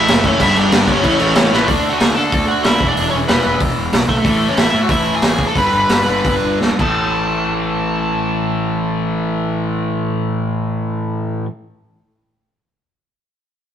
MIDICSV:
0, 0, Header, 1, 6, 480
1, 0, Start_track
1, 0, Key_signature, 3, "major"
1, 0, Tempo, 320000
1, 606, Time_signature, 4, 2, 24, 8
1, 6851, Tempo, 336889
1, 9251, Tempo, 377596
1, 18773, End_track
2, 0, Start_track
2, 0, Title_t, "Overdriven electric guitar"
2, 0, Program_c, 0, 29
2, 0, Note_on_c, 0, 64, 69
2, 0, Note_on_c, 0, 76, 96
2, 344, Note_off_c, 0, 64, 0
2, 377, Note_on_c, 0, 61, 76
2, 392, Note_on_c, 0, 73, 99
2, 393, Note_off_c, 0, 76, 0
2, 595, Note_off_c, 0, 61, 0
2, 598, Note_on_c, 0, 64, 79
2, 603, Note_off_c, 0, 73, 0
2, 620, Note_on_c, 0, 76, 100
2, 824, Note_off_c, 0, 64, 0
2, 861, Note_on_c, 0, 62, 77
2, 885, Note_off_c, 0, 76, 0
2, 885, Note_on_c, 0, 74, 106
2, 1298, Note_off_c, 0, 62, 0
2, 1343, Note_off_c, 0, 74, 0
2, 1358, Note_on_c, 0, 61, 70
2, 1381, Note_on_c, 0, 73, 89
2, 2237, Note_off_c, 0, 61, 0
2, 2249, Note_off_c, 0, 73, 0
2, 2309, Note_on_c, 0, 71, 95
2, 2317, Note_on_c, 0, 59, 65
2, 2367, Note_off_c, 0, 71, 0
2, 2385, Note_on_c, 0, 71, 89
2, 2391, Note_off_c, 0, 59, 0
2, 2409, Note_on_c, 0, 59, 66
2, 2511, Note_off_c, 0, 71, 0
2, 2516, Note_off_c, 0, 59, 0
2, 2517, Note_on_c, 0, 74, 98
2, 2542, Note_on_c, 0, 62, 73
2, 2843, Note_on_c, 0, 78, 97
2, 2866, Note_off_c, 0, 62, 0
2, 2880, Note_on_c, 0, 66, 74
2, 2889, Note_off_c, 0, 74, 0
2, 2965, Note_on_c, 0, 80, 92
2, 2985, Note_off_c, 0, 78, 0
2, 2991, Note_off_c, 0, 66, 0
2, 3002, Note_on_c, 0, 68, 74
2, 3206, Note_off_c, 0, 80, 0
2, 3212, Note_on_c, 0, 81, 99
2, 3224, Note_off_c, 0, 68, 0
2, 3251, Note_on_c, 0, 69, 76
2, 3671, Note_off_c, 0, 81, 0
2, 3692, Note_off_c, 0, 69, 0
2, 3720, Note_on_c, 0, 78, 92
2, 3768, Note_on_c, 0, 66, 72
2, 3945, Note_off_c, 0, 78, 0
2, 3945, Note_on_c, 0, 76, 86
2, 3969, Note_off_c, 0, 66, 0
2, 4008, Note_on_c, 0, 64, 71
2, 4313, Note_on_c, 0, 74, 93
2, 4321, Note_off_c, 0, 64, 0
2, 4324, Note_off_c, 0, 76, 0
2, 4370, Note_on_c, 0, 62, 63
2, 4648, Note_off_c, 0, 74, 0
2, 4654, Note_on_c, 0, 73, 82
2, 4683, Note_off_c, 0, 62, 0
2, 4693, Note_on_c, 0, 61, 70
2, 4730, Note_off_c, 0, 73, 0
2, 4768, Note_off_c, 0, 61, 0
2, 4918, Note_on_c, 0, 71, 72
2, 4948, Note_on_c, 0, 59, 57
2, 5368, Note_off_c, 0, 71, 0
2, 5384, Note_off_c, 0, 59, 0
2, 6131, Note_on_c, 0, 57, 57
2, 6137, Note_on_c, 0, 69, 62
2, 6241, Note_off_c, 0, 69, 0
2, 6243, Note_off_c, 0, 57, 0
2, 6266, Note_on_c, 0, 57, 63
2, 6270, Note_on_c, 0, 69, 62
2, 6708, Note_off_c, 0, 57, 0
2, 6732, Note_on_c, 0, 73, 79
2, 6738, Note_on_c, 0, 61, 62
2, 6754, Note_off_c, 0, 69, 0
2, 6847, Note_off_c, 0, 61, 0
2, 6855, Note_off_c, 0, 73, 0
2, 6884, Note_on_c, 0, 76, 83
2, 6895, Note_on_c, 0, 64, 61
2, 7191, Note_off_c, 0, 76, 0
2, 7197, Note_off_c, 0, 64, 0
2, 7215, Note_on_c, 0, 66, 71
2, 7227, Note_on_c, 0, 78, 87
2, 7315, Note_off_c, 0, 66, 0
2, 7331, Note_off_c, 0, 78, 0
2, 7331, Note_on_c, 0, 76, 81
2, 7351, Note_on_c, 0, 64, 64
2, 7661, Note_off_c, 0, 64, 0
2, 7684, Note_off_c, 0, 76, 0
2, 7690, Note_on_c, 0, 80, 91
2, 7704, Note_on_c, 0, 68, 68
2, 8129, Note_off_c, 0, 68, 0
2, 8138, Note_off_c, 0, 80, 0
2, 8144, Note_on_c, 0, 81, 81
2, 8158, Note_on_c, 0, 69, 75
2, 8254, Note_off_c, 0, 81, 0
2, 8262, Note_off_c, 0, 69, 0
2, 8283, Note_on_c, 0, 71, 84
2, 8290, Note_on_c, 0, 83, 75
2, 9668, Note_off_c, 0, 71, 0
2, 9669, Note_off_c, 0, 83, 0
2, 9959, Note_on_c, 0, 81, 69
2, 15867, Note_off_c, 0, 81, 0
2, 18773, End_track
3, 0, Start_track
3, 0, Title_t, "Distorted electric guitar"
3, 0, Program_c, 1, 30
3, 0, Note_on_c, 1, 45, 92
3, 0, Note_on_c, 1, 52, 96
3, 0, Note_on_c, 1, 57, 116
3, 583, Note_on_c, 1, 43, 97
3, 586, Note_off_c, 1, 45, 0
3, 596, Note_off_c, 1, 52, 0
3, 609, Note_on_c, 1, 50, 102
3, 610, Note_off_c, 1, 57, 0
3, 630, Note_on_c, 1, 55, 114
3, 1529, Note_off_c, 1, 50, 0
3, 1535, Note_on_c, 1, 45, 90
3, 1536, Note_off_c, 1, 43, 0
3, 1555, Note_off_c, 1, 55, 0
3, 1561, Note_on_c, 1, 52, 96
3, 1582, Note_on_c, 1, 57, 117
3, 2492, Note_off_c, 1, 45, 0
3, 2502, Note_on_c, 1, 50, 80
3, 2504, Note_off_c, 1, 52, 0
3, 2506, Note_off_c, 1, 57, 0
3, 2524, Note_on_c, 1, 57, 94
3, 2546, Note_on_c, 1, 62, 83
3, 3216, Note_off_c, 1, 50, 0
3, 3216, Note_off_c, 1, 62, 0
3, 3227, Note_off_c, 1, 57, 0
3, 3234, Note_on_c, 1, 62, 83
3, 3258, Note_on_c, 1, 57, 72
3, 3279, Note_on_c, 1, 50, 60
3, 4183, Note_off_c, 1, 62, 0
3, 4195, Note_off_c, 1, 57, 0
3, 4197, Note_on_c, 1, 40, 83
3, 4206, Note_off_c, 1, 50, 0
3, 4217, Note_on_c, 1, 47, 97
3, 4240, Note_on_c, 1, 52, 98
3, 4906, Note_off_c, 1, 40, 0
3, 4916, Note_off_c, 1, 47, 0
3, 4924, Note_on_c, 1, 40, 76
3, 4946, Note_on_c, 1, 47, 72
3, 4964, Note_off_c, 1, 52, 0
3, 4970, Note_on_c, 1, 52, 79
3, 6113, Note_off_c, 1, 40, 0
3, 6124, Note_off_c, 1, 47, 0
3, 6136, Note_off_c, 1, 52, 0
3, 6349, Note_on_c, 1, 45, 86
3, 6375, Note_on_c, 1, 52, 94
3, 6396, Note_on_c, 1, 57, 93
3, 7055, Note_off_c, 1, 57, 0
3, 7059, Note_off_c, 1, 45, 0
3, 7072, Note_off_c, 1, 52, 0
3, 7072, Note_on_c, 1, 57, 81
3, 7094, Note_on_c, 1, 52, 67
3, 7119, Note_on_c, 1, 45, 61
3, 8242, Note_off_c, 1, 57, 0
3, 8253, Note_off_c, 1, 52, 0
3, 8259, Note_on_c, 1, 43, 86
3, 8265, Note_off_c, 1, 45, 0
3, 8281, Note_on_c, 1, 50, 92
3, 8302, Note_on_c, 1, 55, 96
3, 8971, Note_off_c, 1, 55, 0
3, 8982, Note_off_c, 1, 43, 0
3, 8988, Note_on_c, 1, 55, 79
3, 8993, Note_off_c, 1, 50, 0
3, 9008, Note_on_c, 1, 50, 67
3, 9029, Note_on_c, 1, 43, 63
3, 9916, Note_off_c, 1, 50, 0
3, 9921, Note_on_c, 1, 45, 76
3, 9939, Note_off_c, 1, 55, 0
3, 9949, Note_on_c, 1, 52, 84
3, 9957, Note_off_c, 1, 43, 0
3, 9968, Note_on_c, 1, 57, 82
3, 15880, Note_off_c, 1, 45, 0
3, 15907, Note_off_c, 1, 52, 0
3, 15926, Note_off_c, 1, 57, 0
3, 18773, End_track
4, 0, Start_track
4, 0, Title_t, "Overdriven electric guitar"
4, 0, Program_c, 2, 29
4, 130, Note_on_c, 2, 45, 87
4, 141, Note_on_c, 2, 52, 88
4, 150, Note_on_c, 2, 57, 96
4, 347, Note_off_c, 2, 57, 0
4, 358, Note_off_c, 2, 52, 0
4, 359, Note_off_c, 2, 45, 0
4, 365, Note_on_c, 2, 57, 108
4, 376, Note_on_c, 2, 52, 90
4, 377, Note_on_c, 2, 45, 84
4, 588, Note_on_c, 2, 43, 102
4, 591, Note_off_c, 2, 57, 0
4, 594, Note_off_c, 2, 45, 0
4, 596, Note_off_c, 2, 52, 0
4, 600, Note_on_c, 2, 50, 113
4, 609, Note_on_c, 2, 55, 127
4, 817, Note_off_c, 2, 55, 0
4, 830, Note_off_c, 2, 50, 0
4, 832, Note_off_c, 2, 43, 0
4, 835, Note_on_c, 2, 55, 88
4, 848, Note_on_c, 2, 50, 86
4, 850, Note_on_c, 2, 43, 83
4, 1054, Note_off_c, 2, 43, 0
4, 1063, Note_off_c, 2, 50, 0
4, 1071, Note_off_c, 2, 55, 0
4, 1072, Note_on_c, 2, 43, 83
4, 1081, Note_on_c, 2, 50, 83
4, 1089, Note_on_c, 2, 55, 111
4, 1301, Note_off_c, 2, 55, 0
4, 1307, Note_off_c, 2, 50, 0
4, 1319, Note_on_c, 2, 55, 98
4, 1320, Note_off_c, 2, 43, 0
4, 1325, Note_on_c, 2, 50, 92
4, 1338, Note_on_c, 2, 43, 87
4, 1545, Note_off_c, 2, 55, 0
4, 1549, Note_off_c, 2, 50, 0
4, 1555, Note_off_c, 2, 43, 0
4, 1556, Note_on_c, 2, 45, 96
4, 1565, Note_on_c, 2, 52, 103
4, 1575, Note_on_c, 2, 57, 106
4, 1767, Note_off_c, 2, 57, 0
4, 1772, Note_off_c, 2, 52, 0
4, 1785, Note_off_c, 2, 45, 0
4, 1785, Note_on_c, 2, 57, 94
4, 1790, Note_on_c, 2, 52, 85
4, 1803, Note_on_c, 2, 45, 98
4, 2016, Note_off_c, 2, 45, 0
4, 2022, Note_off_c, 2, 52, 0
4, 2034, Note_on_c, 2, 45, 91
4, 2035, Note_off_c, 2, 57, 0
4, 2040, Note_on_c, 2, 52, 89
4, 2054, Note_on_c, 2, 57, 100
4, 2243, Note_off_c, 2, 57, 0
4, 2256, Note_off_c, 2, 52, 0
4, 2261, Note_off_c, 2, 45, 0
4, 2261, Note_on_c, 2, 57, 106
4, 2274, Note_on_c, 2, 52, 91
4, 2279, Note_on_c, 2, 45, 78
4, 2495, Note_off_c, 2, 57, 0
4, 2502, Note_off_c, 2, 52, 0
4, 2505, Note_off_c, 2, 45, 0
4, 18773, End_track
5, 0, Start_track
5, 0, Title_t, "Picked electric bass"
5, 0, Program_c, 3, 34
5, 141, Note_on_c, 3, 30, 96
5, 514, Note_off_c, 3, 30, 0
5, 606, Note_on_c, 3, 31, 106
5, 795, Note_off_c, 3, 31, 0
5, 851, Note_on_c, 3, 31, 102
5, 1037, Note_off_c, 3, 31, 0
5, 1089, Note_on_c, 3, 31, 113
5, 1276, Note_off_c, 3, 31, 0
5, 1321, Note_on_c, 3, 31, 93
5, 1511, Note_off_c, 3, 31, 0
5, 1557, Note_on_c, 3, 33, 94
5, 1748, Note_off_c, 3, 33, 0
5, 1803, Note_on_c, 3, 33, 105
5, 1992, Note_off_c, 3, 33, 0
5, 2050, Note_on_c, 3, 33, 89
5, 2236, Note_off_c, 3, 33, 0
5, 2298, Note_on_c, 3, 33, 91
5, 2480, Note_off_c, 3, 33, 0
5, 2522, Note_on_c, 3, 38, 86
5, 2819, Note_off_c, 3, 38, 0
5, 3023, Note_on_c, 3, 38, 98
5, 3164, Note_off_c, 3, 38, 0
5, 3257, Note_on_c, 3, 50, 89
5, 3400, Note_off_c, 3, 50, 0
5, 3488, Note_on_c, 3, 38, 82
5, 3784, Note_off_c, 3, 38, 0
5, 3990, Note_on_c, 3, 38, 84
5, 4204, Note_on_c, 3, 28, 93
5, 4226, Note_off_c, 3, 38, 0
5, 4352, Note_off_c, 3, 28, 0
5, 4456, Note_on_c, 3, 28, 80
5, 4601, Note_off_c, 3, 28, 0
5, 4701, Note_on_c, 3, 28, 82
5, 4844, Note_off_c, 3, 28, 0
5, 4945, Note_on_c, 3, 28, 103
5, 5087, Note_off_c, 3, 28, 0
5, 5193, Note_on_c, 3, 28, 91
5, 5333, Note_off_c, 3, 28, 0
5, 5408, Note_on_c, 3, 28, 95
5, 5556, Note_off_c, 3, 28, 0
5, 5663, Note_on_c, 3, 28, 90
5, 5807, Note_off_c, 3, 28, 0
5, 5903, Note_on_c, 3, 35, 85
5, 6047, Note_off_c, 3, 35, 0
5, 6126, Note_on_c, 3, 35, 92
5, 6276, Note_off_c, 3, 35, 0
5, 6369, Note_on_c, 3, 33, 91
5, 6669, Note_off_c, 3, 33, 0
5, 6867, Note_on_c, 3, 33, 95
5, 7006, Note_off_c, 3, 33, 0
5, 7099, Note_on_c, 3, 45, 93
5, 7238, Note_off_c, 3, 45, 0
5, 7315, Note_on_c, 3, 33, 85
5, 7607, Note_off_c, 3, 33, 0
5, 7791, Note_on_c, 3, 33, 83
5, 8086, Note_off_c, 3, 33, 0
5, 8256, Note_on_c, 3, 31, 83
5, 8409, Note_off_c, 3, 31, 0
5, 8511, Note_on_c, 3, 31, 87
5, 8661, Note_off_c, 3, 31, 0
5, 8751, Note_on_c, 3, 31, 97
5, 8905, Note_off_c, 3, 31, 0
5, 9003, Note_on_c, 3, 31, 85
5, 9158, Note_off_c, 3, 31, 0
5, 9246, Note_on_c, 3, 31, 81
5, 9389, Note_off_c, 3, 31, 0
5, 9476, Note_on_c, 3, 31, 92
5, 9620, Note_off_c, 3, 31, 0
5, 9703, Note_on_c, 3, 38, 84
5, 9851, Note_off_c, 3, 38, 0
5, 9941, Note_on_c, 3, 33, 87
5, 15849, Note_off_c, 3, 33, 0
5, 18773, End_track
6, 0, Start_track
6, 0, Title_t, "Drums"
6, 122, Note_on_c, 9, 49, 101
6, 131, Note_on_c, 9, 38, 115
6, 272, Note_off_c, 9, 49, 0
6, 281, Note_off_c, 9, 38, 0
6, 359, Note_on_c, 9, 36, 88
6, 360, Note_on_c, 9, 49, 63
6, 509, Note_off_c, 9, 36, 0
6, 510, Note_off_c, 9, 49, 0
6, 599, Note_on_c, 9, 36, 99
6, 600, Note_on_c, 9, 49, 86
6, 749, Note_off_c, 9, 36, 0
6, 750, Note_off_c, 9, 49, 0
6, 842, Note_on_c, 9, 49, 71
6, 992, Note_off_c, 9, 49, 0
6, 1080, Note_on_c, 9, 49, 97
6, 1089, Note_on_c, 9, 38, 113
6, 1230, Note_off_c, 9, 49, 0
6, 1239, Note_off_c, 9, 38, 0
6, 1316, Note_on_c, 9, 36, 91
6, 1319, Note_on_c, 9, 49, 67
6, 1466, Note_off_c, 9, 36, 0
6, 1469, Note_off_c, 9, 49, 0
6, 1554, Note_on_c, 9, 49, 85
6, 1555, Note_on_c, 9, 36, 89
6, 1704, Note_off_c, 9, 49, 0
6, 1706, Note_off_c, 9, 36, 0
6, 1792, Note_on_c, 9, 49, 72
6, 1942, Note_off_c, 9, 49, 0
6, 2029, Note_on_c, 9, 49, 83
6, 2038, Note_on_c, 9, 38, 119
6, 2179, Note_off_c, 9, 49, 0
6, 2188, Note_off_c, 9, 38, 0
6, 2297, Note_on_c, 9, 38, 67
6, 2447, Note_off_c, 9, 38, 0
6, 2517, Note_on_c, 9, 46, 55
6, 2521, Note_on_c, 9, 36, 108
6, 2667, Note_off_c, 9, 46, 0
6, 2671, Note_off_c, 9, 36, 0
6, 3001, Note_on_c, 9, 46, 59
6, 3010, Note_on_c, 9, 38, 110
6, 3151, Note_off_c, 9, 46, 0
6, 3160, Note_off_c, 9, 38, 0
6, 3486, Note_on_c, 9, 36, 101
6, 3489, Note_on_c, 9, 46, 50
6, 3636, Note_off_c, 9, 36, 0
6, 3639, Note_off_c, 9, 46, 0
6, 3961, Note_on_c, 9, 46, 54
6, 3970, Note_on_c, 9, 38, 113
6, 4111, Note_off_c, 9, 46, 0
6, 4120, Note_off_c, 9, 38, 0
6, 4207, Note_on_c, 9, 36, 98
6, 4357, Note_off_c, 9, 36, 0
6, 4449, Note_on_c, 9, 46, 56
6, 4599, Note_off_c, 9, 46, 0
6, 4925, Note_on_c, 9, 46, 51
6, 4934, Note_on_c, 9, 38, 109
6, 5075, Note_off_c, 9, 46, 0
6, 5084, Note_off_c, 9, 38, 0
6, 5401, Note_on_c, 9, 46, 49
6, 5408, Note_on_c, 9, 36, 102
6, 5551, Note_off_c, 9, 46, 0
6, 5558, Note_off_c, 9, 36, 0
6, 5888, Note_on_c, 9, 46, 55
6, 5897, Note_on_c, 9, 38, 112
6, 6038, Note_off_c, 9, 46, 0
6, 6047, Note_off_c, 9, 38, 0
6, 6132, Note_on_c, 9, 36, 67
6, 6282, Note_off_c, 9, 36, 0
6, 6372, Note_on_c, 9, 36, 93
6, 6376, Note_on_c, 9, 46, 55
6, 6522, Note_off_c, 9, 36, 0
6, 6526, Note_off_c, 9, 46, 0
6, 6854, Note_on_c, 9, 46, 54
6, 6863, Note_on_c, 9, 38, 106
6, 6997, Note_off_c, 9, 46, 0
6, 7005, Note_off_c, 9, 38, 0
6, 7306, Note_on_c, 9, 46, 54
6, 7311, Note_on_c, 9, 36, 102
6, 7449, Note_off_c, 9, 46, 0
6, 7454, Note_off_c, 9, 36, 0
6, 7778, Note_on_c, 9, 46, 63
6, 7787, Note_on_c, 9, 38, 111
6, 7921, Note_off_c, 9, 46, 0
6, 7930, Note_off_c, 9, 38, 0
6, 8017, Note_on_c, 9, 36, 77
6, 8160, Note_off_c, 9, 36, 0
6, 8258, Note_on_c, 9, 36, 88
6, 8262, Note_on_c, 9, 46, 58
6, 8401, Note_off_c, 9, 36, 0
6, 8404, Note_off_c, 9, 46, 0
6, 8738, Note_on_c, 9, 46, 56
6, 8747, Note_on_c, 9, 38, 111
6, 8881, Note_off_c, 9, 46, 0
6, 8889, Note_off_c, 9, 38, 0
6, 9240, Note_on_c, 9, 46, 43
6, 9245, Note_on_c, 9, 36, 93
6, 9369, Note_off_c, 9, 46, 0
6, 9373, Note_off_c, 9, 36, 0
6, 9709, Note_on_c, 9, 38, 56
6, 9836, Note_off_c, 9, 38, 0
6, 9937, Note_on_c, 9, 57, 65
6, 9938, Note_on_c, 9, 36, 90
6, 10064, Note_off_c, 9, 57, 0
6, 10066, Note_off_c, 9, 36, 0
6, 18773, End_track
0, 0, End_of_file